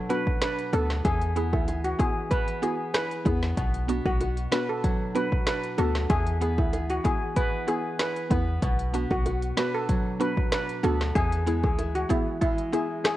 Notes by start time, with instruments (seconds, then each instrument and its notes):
Already playing: nylon-string guitar B2 F#3 B3 D4
0.09 synth pluck B3 D4 F#4, nylon-string guitar F#4, steel pan B4, closed hi-hat, high bongo
0.27 kick
0.42 nylon-string guitar D4, steel pan B4, snare, closed hi-hat, high bongo
0.59 closed hi-hat
0.73 808-style bass D2, synth pluck B3 D4 A4, nylon-string guitar B3, steel pan A4, closed hi-hat, high bongo, low bongo
0.90 snare
1.05 808-style bass E2, nylon-string guitar E3, steel pan G#4, kick, closed hi-hat
1.21 closed hi-hat
1.36 synth pluck B3 E4 G#4, nylon-string guitar B3, closed hi-hat
1.53 808-style bass D2, steel pan E4, kick, high bongo
1.68 nylon-string guitar G#4, closed hi-hat, high bongo
1.84 steel pan F#4, closed hi-hat
1.99 synth pluck B3 E4 G#4, nylon-string guitar E4, steel pan G#4, kick, closed hi-hat, low bongo
2.31 nylon-string guitar B3, steel pan B4, kick, closed hi-hat
2.48 closed hi-hat
2.62 synth pluck B3 E4 F#4, nylon-string guitar G#4, steel pan G#4, closed hi-hat, high bongo
2.94 nylon-string guitar E4, steel pan B4, cross-stick, snare, closed hi-hat, high bongo
3.11 closed hi-hat
3.25 808-style bass E2, synth pluck B3 E4 G#4, nylon-string guitar B3, kick, closed hi-hat, high bongo, low bongo
3.43 snare
3.57 808-style bass B1, nylon-string guitar B2, kick, closed hi-hat
3.74 closed hi-hat
3.88 synth pluck B3 D4 F#4, nylon-string guitar B3, closed hi-hat
4.06 808-style bass B1, steel pan F#4, kick, high bongo
4.20 nylon-string guitar F#4, closed hi-hat, high bongo
4.37 closed hi-hat
4.52 synth pluck B3 D4 F#4, nylon-string guitar D4, steel pan B4, snare, closed hi-hat, low bongo
4.69 steel pan A4
4.84 nylon-string guitar F#3, kick, closed hi-hat
5.15 synth pluck B3 D4 F#4, nylon-string guitar F#4, steel pan B4, closed hi-hat, high bongo
5.32 kick
5.47 nylon-string guitar D4, steel pan B4, snare, closed hi-hat, high bongo
5.64 closed hi-hat
5.78 808-style bass D2, synth pluck B3 D4 F#4, nylon-string guitar B3, steel pan A4, closed hi-hat, high bongo, low bongo
5.95 snare
6.10 808-style bass E2, nylon-string guitar E3, steel pan G#4, kick, closed hi-hat
6.27 closed hi-hat
6.41 synth pluck B3 E4 G#4, nylon-string guitar B3, closed hi-hat
6.58 808-style bass D2, steel pan E4, kick, high bongo
6.73 nylon-string guitar G#4, closed hi-hat, high bongo
6.90 steel pan F#4, closed hi-hat
7.04 synth pluck B3 E4 G#4, nylon-string guitar E4, steel pan G#4, kick, closed hi-hat, low bongo
7.36 nylon-string guitar B3, steel pan B4, kick, closed hi-hat
7.67 synth pluck B3 E4 G#4, nylon-string guitar G#4, steel pan G#4, closed hi-hat, high bongo
7.99 nylon-string guitar E4, steel pan B4, snare, closed hi-hat, high bongo
8.16 closed hi-hat
8.30 808-style bass E2, synth pluck B3 E4 B4, nylon-string guitar B3, kick, closed hi-hat, high bongo, low bongo
8.62 808-style bass B1, nylon-string guitar B2, kick, closed hi-hat
8.79 closed hi-hat
8.94 synth pluck B3 D4 F#4, nylon-string guitar B3, closed hi-hat
9.11 808-style bass B1, steel pan F#4, kick, high bongo
9.26 nylon-string guitar F#4, closed hi-hat, high bongo
9.42 closed hi-hat
9.57 synth pluck B3 D4 F#4, nylon-string guitar D4, steel pan B4, snare, closed hi-hat, low bongo
9.74 steel pan A4
9.89 nylon-string guitar F#3, kick, closed hi-hat
10.20 synth pluck B3 D4 F#4, nylon-string guitar F#4, steel pan B4, closed hi-hat, high bongo
10.37 kick
10.52 nylon-string guitar D4, steel pan B4, snare, closed hi-hat, high bongo
10.69 closed hi-hat
10.83 808-style bass D2, synth pluck B3 D4 F#4, nylon-string guitar B3, steel pan A4, closed hi-hat, high bongo, low bongo
11.01 snare
11.15 808-style bass E2, nylon-string guitar E3, steel pan G#4, kick, closed hi-hat
11.32 closed hi-hat
11.46 nylon-string guitar G#3, synth pluck B3 E4 G#4, closed hi-hat
11.63 808-style bass D2, steel pan G#4, kick, high bongo
11.78 nylon-string guitar E4, closed hi-hat, high bongo
11.95 steel pan F#4, closed hi-hat
12.09 synth pluck B3 E4 G#4, nylon-string guitar B3, steel pan E4, kick, closed hi-hat, low bongo
12.41 nylon-string guitar G#3, steel pan E4, kick, closed hi-hat
12.58 closed hi-hat
12.73 synth pluck B3 E4 G#4, nylon-string guitar E4, steel pan G#4, closed hi-hat, high bongo
13.04 nylon-string guitar B3, steel pan G#4, cross-stick, snare, closed hi-hat, high bongo